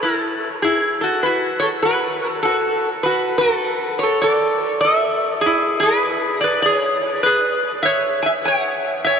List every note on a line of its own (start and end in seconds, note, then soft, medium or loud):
0.03 0.49 E4 medium
0.03 0.48 A4 medium
0.62 0.99 E4 medium
0.62 1.01 G#4 medium
1.01 1.22 F#4 medium
1.01 1.22 A4 medium
1.23 1.59 F#4 medium
1.23 1.62 B4 medium
1.60 1.68 A4 medium
1.60 1.65 C#5 medium
1.82 2.40 F#4 medium
1.82 2.29 B4 medium
2.29 2.42 A4 medium
2.43 2.89 F#4 medium
2.43 2.88 A4 medium
3.03 3.40 F#4 medium
3.03 3.38 B4 medium
3.38 3.97 F#4 medium
3.38 3.98 A4 medium
3.99 4.21 C#5 medium
4.03 4.22 A4 medium
4.22 4.79 A4 medium
4.22 4.80 D5 loud
4.81 5.30 A4 medium
4.81 5.28 E5 medium
5.41 5.82 G#4 medium
5.46 5.80 E4 medium
5.80 6.38 G#4 medium
5.80 6.40 B4 loud
6.41 6.62 B4 medium
6.41 6.62 D5 medium
6.62 7.21 G#4 medium
6.62 6.73 D5 loud
6.73 7.23 C#5 loud
7.23 7.71 G#4 medium
7.23 7.69 B4 medium
7.83 8.21 C#5 medium
7.83 8.23 E5 loud
8.23 8.31 E5 medium
8.23 8.28 G#5 medium
8.45 9.02 C#5 medium
8.45 9.07 F#5 loud
9.04 9.20 C#5 medium
9.04 9.20 E5 loud